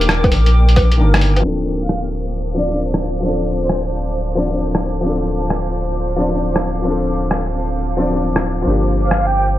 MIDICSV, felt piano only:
0, 0, Header, 1, 2, 480
1, 0, Start_track
1, 0, Tempo, 451128
1, 1533, Time_signature, 4, 2, 24, 8
1, 10201, End_track
2, 0, Start_track
2, 0, Title_t, "Felt piano"
2, 0, Program_c, 0, 0
2, 0, Control_c, 0, 64, 127
2, 0, Note_on_c, 0, 51, 94
2, 0, Note_on_c, 0, 58, 90
2, 0, Note_on_c, 0, 62, 88
2, 0, Note_on_c, 0, 67, 107
2, 0, Note_on_c, 0, 72, 81
2, 781, Note_off_c, 0, 51, 0
2, 795, Note_off_c, 0, 58, 0
2, 810, Note_off_c, 0, 62, 0
2, 824, Note_off_c, 0, 67, 0
2, 1030, Note_on_c, 0, 51, 83
2, 1046, Note_on_c, 0, 58, 74
2, 1061, Note_on_c, 0, 62, 73
2, 1076, Note_on_c, 0, 70, 91
2, 1489, Note_on_c, 0, 53, 79
2, 1502, Note_off_c, 0, 51, 0
2, 1510, Note_off_c, 0, 58, 0
2, 1518, Note_off_c, 0, 62, 0
2, 1519, Note_on_c, 0, 60, 73
2, 1525, Note_off_c, 0, 70, 0
2, 1544, Note_on_c, 0, 62, 74
2, 1547, Note_off_c, 0, 72, 0
2, 1547, Control_c, 0, 64, 0
2, 1573, Note_on_c, 0, 69, 91
2, 1761, Control_c, 0, 64, 127
2, 2691, Note_off_c, 0, 53, 0
2, 2707, Note_off_c, 0, 60, 0
2, 2707, Note_on_c, 0, 53, 84
2, 2722, Note_off_c, 0, 62, 0
2, 2723, Note_on_c, 0, 60, 80
2, 2737, Note_off_c, 0, 69, 0
2, 2740, Note_on_c, 0, 62, 80
2, 2753, Note_on_c, 0, 74, 97
2, 2833, Note_off_c, 0, 53, 0
2, 2849, Note_on_c, 0, 53, 65
2, 2860, Note_off_c, 0, 60, 0
2, 2871, Note_off_c, 0, 62, 0
2, 2876, Note_on_c, 0, 60, 57
2, 2878, Note_off_c, 0, 74, 0
2, 2907, Note_on_c, 0, 62, 56
2, 2935, Note_on_c, 0, 74, 65
2, 3393, Note_off_c, 0, 53, 0
2, 3409, Note_on_c, 0, 53, 79
2, 3420, Note_off_c, 0, 60, 0
2, 3436, Note_on_c, 0, 60, 72
2, 3442, Note_off_c, 0, 62, 0
2, 3456, Note_off_c, 0, 74, 0
2, 3463, Note_on_c, 0, 62, 75
2, 3492, Note_on_c, 0, 69, 90
2, 4615, Note_off_c, 0, 53, 0
2, 4628, Note_off_c, 0, 60, 0
2, 4631, Note_on_c, 0, 53, 92
2, 4642, Note_off_c, 0, 62, 0
2, 4646, Note_on_c, 0, 60, 84
2, 4657, Note_off_c, 0, 69, 0
2, 4660, Note_on_c, 0, 62, 81
2, 4674, Note_on_c, 0, 74, 94
2, 4750, Note_off_c, 0, 53, 0
2, 4766, Note_on_c, 0, 53, 63
2, 4781, Note_off_c, 0, 60, 0
2, 4791, Note_off_c, 0, 62, 0
2, 4797, Note_on_c, 0, 60, 57
2, 4798, Note_off_c, 0, 74, 0
2, 4825, Note_on_c, 0, 62, 60
2, 4853, Note_on_c, 0, 74, 68
2, 5313, Note_off_c, 0, 53, 0
2, 5329, Note_on_c, 0, 53, 83
2, 5340, Note_off_c, 0, 60, 0
2, 5356, Note_on_c, 0, 60, 77
2, 5361, Note_off_c, 0, 62, 0
2, 5374, Note_off_c, 0, 74, 0
2, 5385, Note_on_c, 0, 62, 75
2, 5410, Note_on_c, 0, 69, 91
2, 6535, Note_off_c, 0, 53, 0
2, 6548, Note_off_c, 0, 60, 0
2, 6557, Note_on_c, 0, 53, 88
2, 6563, Note_off_c, 0, 62, 0
2, 6570, Note_on_c, 0, 60, 81
2, 6576, Note_off_c, 0, 69, 0
2, 6586, Note_on_c, 0, 62, 80
2, 6598, Note_on_c, 0, 74, 101
2, 6673, Note_off_c, 0, 53, 0
2, 6689, Note_on_c, 0, 53, 65
2, 6704, Note_off_c, 0, 60, 0
2, 6714, Note_off_c, 0, 62, 0
2, 6720, Note_off_c, 0, 74, 0
2, 6720, Note_on_c, 0, 60, 61
2, 6747, Note_on_c, 0, 62, 60
2, 6776, Note_on_c, 0, 74, 70
2, 7242, Note_off_c, 0, 53, 0
2, 7258, Note_on_c, 0, 53, 82
2, 7268, Note_off_c, 0, 60, 0
2, 7281, Note_off_c, 0, 62, 0
2, 7287, Note_on_c, 0, 60, 78
2, 7296, Note_off_c, 0, 74, 0
2, 7316, Note_on_c, 0, 62, 74
2, 7343, Note_on_c, 0, 69, 92
2, 8459, Note_off_c, 0, 53, 0
2, 8474, Note_off_c, 0, 60, 0
2, 8479, Note_on_c, 0, 53, 91
2, 8488, Note_off_c, 0, 62, 0
2, 8490, Note_on_c, 0, 60, 81
2, 8502, Note_off_c, 0, 69, 0
2, 8507, Note_on_c, 0, 62, 78
2, 8520, Note_on_c, 0, 74, 99
2, 8601, Note_off_c, 0, 53, 0
2, 8617, Note_on_c, 0, 53, 64
2, 8626, Note_off_c, 0, 60, 0
2, 8635, Note_off_c, 0, 62, 0
2, 8641, Note_off_c, 0, 74, 0
2, 8647, Note_on_c, 0, 60, 56
2, 8677, Note_on_c, 0, 62, 60
2, 8704, Note_on_c, 0, 74, 68
2, 9156, Note_off_c, 0, 53, 0
2, 9172, Note_on_c, 0, 53, 81
2, 9192, Note_off_c, 0, 60, 0
2, 9201, Note_on_c, 0, 58, 76
2, 9206, Note_off_c, 0, 62, 0
2, 9220, Note_off_c, 0, 74, 0
2, 9225, Control_c, 0, 64, 0
2, 9228, Note_on_c, 0, 62, 78
2, 9255, Note_on_c, 0, 67, 90
2, 9425, Control_c, 0, 64, 127
2, 10201, Note_off_c, 0, 53, 0
2, 10201, Note_off_c, 0, 58, 0
2, 10201, Note_off_c, 0, 62, 0
2, 10201, Note_off_c, 0, 67, 0
2, 10201, End_track
0, 0, End_of_file